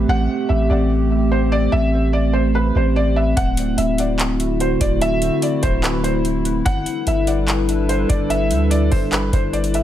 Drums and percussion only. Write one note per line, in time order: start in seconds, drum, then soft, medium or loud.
3.37 kick loud
3.37 closed hi-hat medium
3.57 closed hi-hat medium
3.78 closed hi-hat medium
3.98 closed hi-hat medium
4.19 clap loud
4.19 closed hi-hat medium
4.40 closed hi-hat medium
4.60 closed hi-hat medium
4.81 kick medium
4.81 closed hi-hat medium
5.01 closed hi-hat medium
5.22 closed hi-hat medium
5.42 closed hi-hat medium
5.63 kick loud
5.63 closed hi-hat medium
5.84 clap loud
5.84 closed hi-hat medium
6.04 closed hi-hat medium
6.25 closed hi-hat medium
6.45 closed hi-hat medium
6.66 kick loud
6.66 closed hi-hat medium
6.86 closed hi-hat medium
7.07 closed hi-hat medium
7.27 closed hi-hat medium
7.48 clap loud
7.48 closed hi-hat medium
7.69 closed hi-hat medium
7.89 closed hi-hat medium
8.10 kick medium
8.10 closed hi-hat medium
8.30 closed hi-hat medium
8.51 closed hi-hat medium
8.71 closed hi-hat medium
8.92 kick loud
8.92 open hi-hat medium
9.12 clap loud
9.12 closed hi-hat medium
9.33 kick medium
9.33 closed hi-hat medium
9.54 closed hi-hat medium
9.64 closed hi-hat medium
9.74 closed hi-hat medium